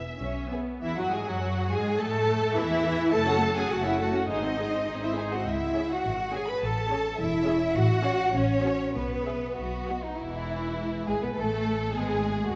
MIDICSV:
0, 0, Header, 1, 6, 480
1, 0, Start_track
1, 0, Tempo, 611621
1, 650, Time_signature, 2, 2, 24, 8
1, 1118, Tempo, 570342
1, 3038, Tempo, 588813
1, 4958, Tempo, 565504
1, 6398, Tempo, 610998
1, 8318, Tempo, 579710
1, 10267, End_track
2, 0, Start_track
2, 0, Title_t, "Violin section"
2, 0, Program_c, 0, 48
2, 411, Note_on_c, 0, 71, 33
2, 412, Note_on_c, 0, 68, 33
2, 473, Note_off_c, 0, 71, 0
2, 475, Note_off_c, 0, 68, 0
2, 654, Note_on_c, 0, 76, 52
2, 762, Note_off_c, 0, 76, 0
2, 771, Note_on_c, 0, 78, 50
2, 887, Note_off_c, 0, 78, 0
2, 893, Note_on_c, 0, 80, 52
2, 1002, Note_on_c, 0, 78, 60
2, 1006, Note_off_c, 0, 80, 0
2, 1360, Note_on_c, 0, 80, 60
2, 1361, Note_off_c, 0, 78, 0
2, 1600, Note_on_c, 0, 81, 72
2, 1604, Note_off_c, 0, 80, 0
2, 2081, Note_off_c, 0, 81, 0
2, 2081, Note_on_c, 0, 76, 74
2, 2545, Note_off_c, 0, 76, 0
2, 2557, Note_on_c, 0, 81, 82
2, 2909, Note_off_c, 0, 81, 0
2, 2920, Note_on_c, 0, 80, 75
2, 3036, Note_on_c, 0, 78, 68
2, 3037, Note_off_c, 0, 80, 0
2, 3156, Note_off_c, 0, 78, 0
2, 3162, Note_on_c, 0, 76, 61
2, 3276, Note_on_c, 0, 78, 62
2, 3279, Note_off_c, 0, 76, 0
2, 3341, Note_off_c, 0, 78, 0
2, 3510, Note_on_c, 0, 75, 60
2, 4105, Note_off_c, 0, 75, 0
2, 4123, Note_on_c, 0, 76, 47
2, 4239, Note_on_c, 0, 80, 48
2, 4241, Note_off_c, 0, 76, 0
2, 4289, Note_off_c, 0, 80, 0
2, 4359, Note_on_c, 0, 78, 50
2, 4480, Note_off_c, 0, 78, 0
2, 4484, Note_on_c, 0, 76, 60
2, 4842, Note_off_c, 0, 76, 0
2, 4842, Note_on_c, 0, 78, 62
2, 5192, Note_on_c, 0, 80, 62
2, 5197, Note_off_c, 0, 78, 0
2, 5313, Note_off_c, 0, 80, 0
2, 5313, Note_on_c, 0, 83, 56
2, 5434, Note_off_c, 0, 83, 0
2, 5435, Note_on_c, 0, 81, 67
2, 5906, Note_off_c, 0, 81, 0
2, 5920, Note_on_c, 0, 76, 66
2, 6391, Note_off_c, 0, 76, 0
2, 6396, Note_on_c, 0, 78, 79
2, 6862, Note_off_c, 0, 78, 0
2, 6862, Note_on_c, 0, 73, 74
2, 7339, Note_on_c, 0, 71, 59
2, 7342, Note_off_c, 0, 73, 0
2, 7821, Note_off_c, 0, 71, 0
2, 7832, Note_on_c, 0, 66, 61
2, 8174, Note_off_c, 0, 66, 0
2, 8199, Note_on_c, 0, 63, 52
2, 8311, Note_on_c, 0, 64, 59
2, 8318, Note_off_c, 0, 63, 0
2, 9039, Note_on_c, 0, 68, 59
2, 9041, Note_off_c, 0, 64, 0
2, 9162, Note_off_c, 0, 68, 0
2, 9165, Note_on_c, 0, 71, 56
2, 9212, Note_off_c, 0, 71, 0
2, 9276, Note_on_c, 0, 69, 65
2, 9748, Note_off_c, 0, 69, 0
2, 9758, Note_on_c, 0, 68, 67
2, 10237, Note_off_c, 0, 68, 0
2, 10237, Note_on_c, 0, 66, 62
2, 10267, Note_off_c, 0, 66, 0
2, 10267, End_track
3, 0, Start_track
3, 0, Title_t, "Violin section"
3, 0, Program_c, 1, 48
3, 0, Note_on_c, 1, 76, 52
3, 394, Note_off_c, 1, 76, 0
3, 661, Note_on_c, 1, 64, 60
3, 766, Note_off_c, 1, 64, 0
3, 778, Note_on_c, 1, 66, 51
3, 888, Note_off_c, 1, 66, 0
3, 889, Note_on_c, 1, 68, 57
3, 1004, Note_off_c, 1, 68, 0
3, 1011, Note_on_c, 1, 66, 60
3, 1359, Note_off_c, 1, 66, 0
3, 1360, Note_on_c, 1, 68, 67
3, 1599, Note_off_c, 1, 68, 0
3, 1608, Note_on_c, 1, 69, 73
3, 2085, Note_off_c, 1, 69, 0
3, 2089, Note_on_c, 1, 64, 85
3, 2559, Note_off_c, 1, 64, 0
3, 2565, Note_on_c, 1, 81, 65
3, 2671, Note_off_c, 1, 81, 0
3, 2676, Note_on_c, 1, 78, 57
3, 2796, Note_off_c, 1, 78, 0
3, 2796, Note_on_c, 1, 81, 55
3, 2916, Note_off_c, 1, 81, 0
3, 2921, Note_on_c, 1, 78, 51
3, 3040, Note_off_c, 1, 78, 0
3, 3040, Note_on_c, 1, 81, 52
3, 3149, Note_off_c, 1, 81, 0
3, 3162, Note_on_c, 1, 78, 46
3, 3279, Note_off_c, 1, 78, 0
3, 3284, Note_on_c, 1, 81, 45
3, 3400, Note_off_c, 1, 81, 0
3, 3400, Note_on_c, 1, 78, 39
3, 3520, Note_off_c, 1, 78, 0
3, 3520, Note_on_c, 1, 72, 42
3, 3631, Note_off_c, 1, 72, 0
3, 3646, Note_on_c, 1, 75, 38
3, 3763, Note_off_c, 1, 75, 0
3, 3767, Note_on_c, 1, 72, 38
3, 3884, Note_off_c, 1, 72, 0
3, 3886, Note_on_c, 1, 75, 35
3, 4001, Note_on_c, 1, 72, 36
3, 4003, Note_off_c, 1, 75, 0
3, 4113, Note_off_c, 1, 72, 0
3, 4117, Note_on_c, 1, 75, 35
3, 4238, Note_on_c, 1, 72, 33
3, 4241, Note_off_c, 1, 75, 0
3, 4361, Note_on_c, 1, 75, 36
3, 4362, Note_off_c, 1, 72, 0
3, 4483, Note_off_c, 1, 75, 0
3, 4722, Note_on_c, 1, 73, 52
3, 4898, Note_off_c, 1, 73, 0
3, 5206, Note_on_c, 1, 73, 51
3, 5379, Note_off_c, 1, 73, 0
3, 5678, Note_on_c, 1, 73, 59
3, 5856, Note_off_c, 1, 73, 0
3, 6159, Note_on_c, 1, 73, 59
3, 6337, Note_off_c, 1, 73, 0
3, 6627, Note_on_c, 1, 73, 70
3, 6802, Note_off_c, 1, 73, 0
3, 7104, Note_on_c, 1, 73, 65
3, 7282, Note_off_c, 1, 73, 0
3, 7583, Note_on_c, 1, 76, 57
3, 7768, Note_off_c, 1, 76, 0
3, 8079, Note_on_c, 1, 75, 50
3, 8258, Note_off_c, 1, 75, 0
3, 8313, Note_on_c, 1, 64, 55
3, 9009, Note_off_c, 1, 64, 0
3, 9047, Note_on_c, 1, 68, 49
3, 9163, Note_off_c, 1, 68, 0
3, 9170, Note_on_c, 1, 71, 52
3, 9287, Note_off_c, 1, 71, 0
3, 9294, Note_on_c, 1, 69, 61
3, 9762, Note_on_c, 1, 68, 66
3, 9766, Note_off_c, 1, 69, 0
3, 10239, Note_off_c, 1, 68, 0
3, 10267, End_track
4, 0, Start_track
4, 0, Title_t, "Cello section"
4, 0, Program_c, 2, 48
4, 157, Note_on_c, 2, 47, 41
4, 547, Note_off_c, 2, 47, 0
4, 650, Note_on_c, 2, 64, 68
4, 760, Note_off_c, 2, 64, 0
4, 774, Note_on_c, 2, 66, 61
4, 888, Note_on_c, 2, 68, 62
4, 889, Note_off_c, 2, 66, 0
4, 1004, Note_off_c, 2, 68, 0
4, 1007, Note_on_c, 2, 66, 61
4, 1364, Note_off_c, 2, 66, 0
4, 1366, Note_on_c, 2, 68, 70
4, 1606, Note_off_c, 2, 68, 0
4, 1606, Note_on_c, 2, 69, 83
4, 2082, Note_on_c, 2, 64, 81
4, 2084, Note_off_c, 2, 69, 0
4, 2554, Note_on_c, 2, 69, 88
4, 2556, Note_off_c, 2, 64, 0
4, 2915, Note_off_c, 2, 69, 0
4, 2917, Note_on_c, 2, 68, 78
4, 3035, Note_on_c, 2, 66, 81
4, 3038, Note_off_c, 2, 68, 0
4, 3156, Note_off_c, 2, 66, 0
4, 3162, Note_on_c, 2, 64, 73
4, 3276, Note_off_c, 2, 64, 0
4, 3277, Note_on_c, 2, 66, 66
4, 3513, Note_off_c, 2, 66, 0
4, 3521, Note_on_c, 2, 63, 64
4, 4111, Note_off_c, 2, 63, 0
4, 4123, Note_on_c, 2, 64, 55
4, 4240, Note_on_c, 2, 68, 54
4, 4244, Note_off_c, 2, 64, 0
4, 4363, Note_off_c, 2, 68, 0
4, 4365, Note_on_c, 2, 66, 51
4, 4485, Note_off_c, 2, 66, 0
4, 4485, Note_on_c, 2, 64, 69
4, 4835, Note_off_c, 2, 64, 0
4, 4840, Note_on_c, 2, 66, 69
4, 5196, Note_off_c, 2, 66, 0
4, 5198, Note_on_c, 2, 68, 66
4, 5316, Note_off_c, 2, 68, 0
4, 5321, Note_on_c, 2, 71, 68
4, 5438, Note_off_c, 2, 71, 0
4, 5440, Note_on_c, 2, 69, 72
4, 5918, Note_off_c, 2, 69, 0
4, 5922, Note_on_c, 2, 64, 79
4, 6392, Note_off_c, 2, 64, 0
4, 6397, Note_on_c, 2, 66, 92
4, 6858, Note_on_c, 2, 61, 82
4, 6863, Note_off_c, 2, 66, 0
4, 7331, Note_off_c, 2, 61, 0
4, 7341, Note_on_c, 2, 59, 65
4, 8063, Note_off_c, 2, 59, 0
4, 8798, Note_on_c, 2, 56, 44
4, 9248, Note_off_c, 2, 56, 0
4, 9279, Note_on_c, 2, 57, 49
4, 9755, Note_on_c, 2, 59, 46
4, 9759, Note_off_c, 2, 57, 0
4, 9992, Note_off_c, 2, 59, 0
4, 9994, Note_on_c, 2, 57, 48
4, 10231, Note_off_c, 2, 57, 0
4, 10232, Note_on_c, 2, 59, 56
4, 10267, Note_off_c, 2, 59, 0
4, 10267, End_track
5, 0, Start_track
5, 0, Title_t, "Viola section"
5, 0, Program_c, 3, 48
5, 159, Note_on_c, 3, 61, 45
5, 389, Note_off_c, 3, 61, 0
5, 405, Note_on_c, 3, 59, 39
5, 649, Note_off_c, 3, 59, 0
5, 649, Note_on_c, 3, 52, 55
5, 760, Note_off_c, 3, 52, 0
5, 767, Note_on_c, 3, 54, 54
5, 883, Note_off_c, 3, 54, 0
5, 891, Note_on_c, 3, 56, 58
5, 1001, Note_on_c, 3, 54, 55
5, 1005, Note_off_c, 3, 56, 0
5, 1353, Note_off_c, 3, 54, 0
5, 1365, Note_on_c, 3, 56, 66
5, 1601, Note_off_c, 3, 56, 0
5, 1611, Note_on_c, 3, 57, 69
5, 2077, Note_off_c, 3, 57, 0
5, 2086, Note_on_c, 3, 52, 69
5, 2557, Note_off_c, 3, 52, 0
5, 2559, Note_on_c, 3, 69, 57
5, 2561, Note_on_c, 3, 57, 58
5, 2669, Note_off_c, 3, 69, 0
5, 2670, Note_off_c, 3, 57, 0
5, 2681, Note_on_c, 3, 66, 53
5, 2682, Note_on_c, 3, 61, 53
5, 2796, Note_on_c, 3, 69, 52
5, 2797, Note_on_c, 3, 57, 49
5, 2798, Note_off_c, 3, 61, 0
5, 2798, Note_off_c, 3, 66, 0
5, 2917, Note_off_c, 3, 57, 0
5, 2917, Note_off_c, 3, 69, 0
5, 2918, Note_on_c, 3, 61, 49
5, 2920, Note_on_c, 3, 66, 46
5, 3038, Note_on_c, 3, 69, 47
5, 3039, Note_off_c, 3, 61, 0
5, 3039, Note_on_c, 3, 57, 48
5, 3040, Note_off_c, 3, 66, 0
5, 3149, Note_off_c, 3, 57, 0
5, 3149, Note_off_c, 3, 69, 0
5, 3156, Note_on_c, 3, 61, 44
5, 3156, Note_on_c, 3, 66, 47
5, 3276, Note_off_c, 3, 61, 0
5, 3276, Note_off_c, 3, 66, 0
5, 3278, Note_on_c, 3, 57, 47
5, 3278, Note_on_c, 3, 69, 47
5, 3390, Note_on_c, 3, 61, 40
5, 3392, Note_on_c, 3, 66, 43
5, 3397, Note_off_c, 3, 57, 0
5, 3398, Note_off_c, 3, 69, 0
5, 3514, Note_off_c, 3, 61, 0
5, 3514, Note_on_c, 3, 63, 40
5, 3515, Note_off_c, 3, 66, 0
5, 3516, Note_on_c, 3, 68, 41
5, 3629, Note_off_c, 3, 63, 0
5, 3629, Note_off_c, 3, 68, 0
5, 3635, Note_on_c, 3, 72, 37
5, 3638, Note_on_c, 3, 60, 37
5, 3756, Note_on_c, 3, 63, 37
5, 3756, Note_on_c, 3, 68, 37
5, 3758, Note_off_c, 3, 72, 0
5, 3759, Note_off_c, 3, 60, 0
5, 3872, Note_on_c, 3, 60, 35
5, 3875, Note_on_c, 3, 72, 35
5, 3878, Note_off_c, 3, 63, 0
5, 3878, Note_off_c, 3, 68, 0
5, 3991, Note_on_c, 3, 68, 34
5, 3993, Note_on_c, 3, 63, 37
5, 3996, Note_off_c, 3, 60, 0
5, 3998, Note_off_c, 3, 72, 0
5, 4108, Note_off_c, 3, 68, 0
5, 4109, Note_off_c, 3, 63, 0
5, 4116, Note_on_c, 3, 60, 36
5, 4118, Note_on_c, 3, 72, 35
5, 4235, Note_on_c, 3, 63, 37
5, 4235, Note_on_c, 3, 68, 37
5, 4240, Note_off_c, 3, 60, 0
5, 4241, Note_off_c, 3, 72, 0
5, 4359, Note_on_c, 3, 72, 34
5, 4360, Note_off_c, 3, 63, 0
5, 4360, Note_off_c, 3, 68, 0
5, 4360, Note_on_c, 3, 60, 34
5, 4482, Note_off_c, 3, 72, 0
5, 4483, Note_off_c, 3, 60, 0
5, 4717, Note_on_c, 3, 61, 51
5, 4718, Note_on_c, 3, 68, 51
5, 4896, Note_off_c, 3, 61, 0
5, 4896, Note_off_c, 3, 68, 0
5, 5191, Note_on_c, 3, 61, 55
5, 5192, Note_on_c, 3, 68, 52
5, 5371, Note_off_c, 3, 61, 0
5, 5371, Note_off_c, 3, 68, 0
5, 5673, Note_on_c, 3, 61, 57
5, 5675, Note_on_c, 3, 68, 56
5, 5853, Note_off_c, 3, 61, 0
5, 5854, Note_off_c, 3, 68, 0
5, 6153, Note_on_c, 3, 61, 65
5, 6154, Note_on_c, 3, 68, 67
5, 6334, Note_off_c, 3, 61, 0
5, 6335, Note_off_c, 3, 68, 0
5, 6623, Note_on_c, 3, 61, 71
5, 6625, Note_on_c, 3, 66, 74
5, 6800, Note_off_c, 3, 61, 0
5, 6801, Note_off_c, 3, 66, 0
5, 7098, Note_on_c, 3, 61, 66
5, 7099, Note_on_c, 3, 66, 64
5, 7279, Note_off_c, 3, 61, 0
5, 7279, Note_off_c, 3, 66, 0
5, 7580, Note_on_c, 3, 68, 53
5, 7581, Note_on_c, 3, 59, 51
5, 7766, Note_off_c, 3, 68, 0
5, 7767, Note_off_c, 3, 59, 0
5, 8071, Note_on_c, 3, 66, 49
5, 8072, Note_on_c, 3, 59, 50
5, 8254, Note_off_c, 3, 66, 0
5, 8255, Note_off_c, 3, 59, 0
5, 8319, Note_on_c, 3, 52, 49
5, 9012, Note_off_c, 3, 52, 0
5, 9044, Note_on_c, 3, 56, 52
5, 9093, Note_off_c, 3, 56, 0
5, 9162, Note_on_c, 3, 59, 51
5, 9210, Note_off_c, 3, 59, 0
5, 9284, Note_on_c, 3, 57, 59
5, 9752, Note_off_c, 3, 57, 0
5, 9756, Note_on_c, 3, 56, 57
5, 10226, Note_off_c, 3, 56, 0
5, 10267, End_track
6, 0, Start_track
6, 0, Title_t, "Double bass section"
6, 0, Program_c, 4, 48
6, 158, Note_on_c, 4, 35, 47
6, 548, Note_off_c, 4, 35, 0
6, 647, Note_on_c, 4, 40, 57
6, 759, Note_off_c, 4, 40, 0
6, 766, Note_on_c, 4, 42, 49
6, 814, Note_off_c, 4, 42, 0
6, 886, Note_on_c, 4, 44, 55
6, 1000, Note_off_c, 4, 44, 0
6, 1000, Note_on_c, 4, 42, 56
6, 1359, Note_on_c, 4, 44, 63
6, 1360, Note_off_c, 4, 42, 0
6, 1603, Note_off_c, 4, 44, 0
6, 1606, Note_on_c, 4, 45, 73
6, 2074, Note_off_c, 4, 45, 0
6, 2083, Note_on_c, 4, 40, 76
6, 2556, Note_off_c, 4, 40, 0
6, 2559, Note_on_c, 4, 30, 68
6, 2982, Note_off_c, 4, 30, 0
6, 3042, Note_on_c, 4, 30, 68
6, 3463, Note_off_c, 4, 30, 0
6, 3518, Note_on_c, 4, 32, 50
6, 3944, Note_off_c, 4, 32, 0
6, 3998, Note_on_c, 4, 32, 47
6, 4426, Note_off_c, 4, 32, 0
6, 4484, Note_on_c, 4, 37, 64
6, 4860, Note_off_c, 4, 37, 0
6, 4957, Note_on_c, 4, 32, 63
6, 5334, Note_off_c, 4, 32, 0
6, 5436, Note_on_c, 4, 33, 63
6, 5815, Note_off_c, 4, 33, 0
6, 5910, Note_on_c, 4, 28, 71
6, 6293, Note_off_c, 4, 28, 0
6, 6398, Note_on_c, 4, 33, 78
6, 6764, Note_off_c, 4, 33, 0
6, 6857, Note_on_c, 4, 33, 81
6, 7238, Note_off_c, 4, 33, 0
6, 7341, Note_on_c, 4, 35, 63
6, 7729, Note_off_c, 4, 35, 0
6, 7830, Note_on_c, 4, 35, 60
6, 8218, Note_off_c, 4, 35, 0
6, 8311, Note_on_c, 4, 28, 47
6, 9008, Note_off_c, 4, 28, 0
6, 9045, Note_on_c, 4, 32, 52
6, 9093, Note_off_c, 4, 32, 0
6, 9168, Note_on_c, 4, 35, 50
6, 9215, Note_off_c, 4, 35, 0
6, 9285, Note_on_c, 4, 33, 55
6, 9753, Note_off_c, 4, 33, 0
6, 9761, Note_on_c, 4, 32, 63
6, 10235, Note_on_c, 4, 39, 54
6, 10238, Note_off_c, 4, 32, 0
6, 10267, Note_off_c, 4, 39, 0
6, 10267, End_track
0, 0, End_of_file